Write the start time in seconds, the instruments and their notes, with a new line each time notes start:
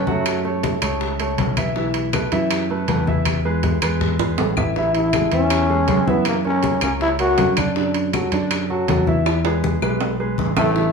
Already playing: picked electric bass F#2
0.07 grand piano F#3 F#4 F#5, trombone A3, high bongo, high conga
0.26 high bongo, high conga, high timbale, claves
0.45 grand piano A3 A4 C#5, high bongo, high conga
0.63 high bongo, high conga, high timbale
0.82 picked electric bass C#2, grand piano A3 A4 C#5, high bongo, high conga, high timbale, claves
1.01 high bongo, high conga
1.20 grand piano A3 A4 C#5, high conga, high timbale
1.38 picked electric bass B1, high bongo, low bongo, high conga, high timbale
1.57 grand piano E3 E4 E5, high bongo, high conga, high timbale, claves
1.76 grand piano E3 E4 E5, high bongo, high conga
1.94 high bongo, high conga, high timbale
2.13 grand piano A3 A4 B4, high bongo, high conga, high timbale, claves
2.32 picked electric bass F#2, grand piano E3 E4 E5, high bongo, high conga, high timbale
2.51 high bongo, high conga, high timbale, claves
2.70 grand piano A3 A4 B4, high conga
2.88 picked electric bass E2, grand piano A3 A4 B4, high bongo, low bongo, high conga, high timbale
3.07 grand piano E3 E4 E5, high bongo, high conga
3.25 high bongo, high conga, high timbale, claves
3.45 grand piano G#3 G#4 B4, high bongo
3.63 high bongo, low conga, high timbale
3.82 picked electric bass E2, grand piano G#3 G#4 B4, high bongo, high timbale, claves
4.01 high bongo, low conga
4.19 grand piano G#3 G#4 B4, low conga, high timbale
4.38 picked electric bass A1, high bongo, low bongo, low timbale
4.57 grand piano E3 E4 E5, high bongo, low conga, low timbale, claves
4.76 grand piano E3 E4 E5, trombone E4, high bongo, high conga
4.95 trombone E4, high bongo, high conga, high timbale
5.13 grand piano G#3 G#4 A4, high bongo, high conga, high timbale, claves
5.32 picked electric bass E2, grand piano E3 E4 E5, trombone C#4, high bongo, high conga, high timbale
5.50 high bongo, high conga, high timbale, claves
5.70 grand piano G#3 G#4 A4, high conga
5.88 picked electric bass F#2, grand piano G#3 G#4 A4, high bongo, low bongo, high conga, high timbale
6.07 grand piano E3 E4 E5, trombone B3, high bongo, high conga
6.25 trombone A#3, high bongo, high conga, high timbale, claves
6.44 grand piano A#3 A#4 C#5, trombone C#4, high bongo, high conga
6.63 high bongo, high conga, high timbale
6.81 picked electric bass C#2, grand piano A#3 A#4 C#5, trombone C#4, high bongo, high conga, high timbale, claves
7.01 trombone E4, high bongo, high conga
7.19 grand piano A#3 A#4 C#5, trombone F#4, high conga, high timbale
7.38 picked electric bass F#2, high bongo, low bongo, high conga, high timbale, low timbale
7.57 grand piano D3 D4 D5, high bongo, high conga, high timbale, claves
7.76 grand piano D3 D4 D5, high bongo, high conga
7.94 high bongo, high conga, high timbale
8.13 grand piano F#3 F#4 A4, high bongo, high conga, high timbale, claves
8.32 picked electric bass F#2, grand piano D3 D4 D5, high bongo, high conga, high timbale
8.51 high bongo, high conga, high timbale, claves
8.70 grand piano F#3 F#4 A4, high conga
8.88 picked electric bass E2, grand piano F#3 F#4 A4, high bongo, low bongo, high conga, high timbale, low timbale
9.07 grand piano E3 E4 E5, high bongo, high conga
9.26 high bongo, high conga, high timbale, claves
9.45 grand piano G#3 G#4 B4, high bongo, high conga, high timbale
9.64 high bongo, high conga
9.82 picked electric bass B1, grand piano G#3 G#4 B4, high bongo, high conga, claves
10.01 high conga, low timbale
10.20 grand piano G#3 G#4 B4, high conga
10.38 picked electric bass A1, low bongo, high conga
10.57 grand piano E3 E4 E5, trombone A3, low bongo, high conga, low timbale, claves
10.76 grand piano E3 E4 E5, high bongo, high conga